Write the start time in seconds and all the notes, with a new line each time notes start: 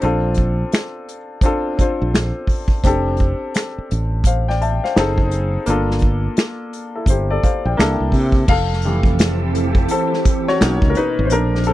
0.01 A#1 C4 D4 F4 A4, closed hi-hat
0.34 kick, closed hi-hat
0.72 finger snap, snare, closed hi-hat
1.09 closed hi-hat
1.41 C4 D4 F4, kick, closed hi-hat
1.46 A4
1.77 C4 D4 F4 C5, muted fretless electric bass stroke, kick, closed hi-hat
2.02 A#1
2.14 finger snap, snare, closed hi-hat
2.47 kick, open hi-hat
2.68 kick
2.84 F1 C4 D4 G4 A4, kick, closed hi-hat
3.17 kick, closed hi-hat
3.54 finger snap, snare, closed hi-hat
3.78 muted fretless electric bass stroke
3.91 A1, closed hi-hat
4.24 C5 F5, kick, closed hi-hat
4.49 D5 G5, snare
4.62 E5 A5, closed hi-hat
4.84 C5 F5, snare
4.96 F#1 C4 D#4 G#4 A4, finger snap, snare, closed hi-hat
5.18 kick
5.31 closed hi-hat
5.66 G1 A#3 D4 F4 A4, closed hi-hat
5.91 snare
5.99 kick, closed hi-hat
6.37 finger snap, snare, closed hi-hat
6.73 closed hi-hat
6.96 E4 A4
7.06 G1 G4 C5, kick, closed hi-hat
7.30 A4 D5
7.43 C5 F5, muted fretless electric bass stroke, kick, closed hi-hat
7.65 A#1 D5 G5
7.77 C2 A#3 D4 E4 A4, finger snap, snare, closed hi-hat
8.00 C2
8.12 C3, kick, open hi-hat
8.32 kick
8.47 F1 E3 C4 G4 A4 F5, kick, crash
8.73 snare
8.82 G3 A3, closed hi-hat
8.86 E3
9.03 kick, closed hi-hat
9.19 finger snap, snare, closed hi-hat
9.55 closed hi-hat
9.75 kick, closed hi-hat
9.88 C4 A4, closed hi-hat
10.13 snare
10.25 kick, closed hi-hat
10.48 F#4 C#5, snare
10.60 B1 A#3 C#4 D#4, finger snap, snare, closed hi-hat
10.82 C#2, kick
10.90 A#4
10.95 D#4 B4, closed hi-hat
11.19 G#1
11.25 C5
11.30 A#1 C4 D4 A4 A#4, closed hi-hat
11.55 snare
11.64 A4, closed hi-hat
11.68 C4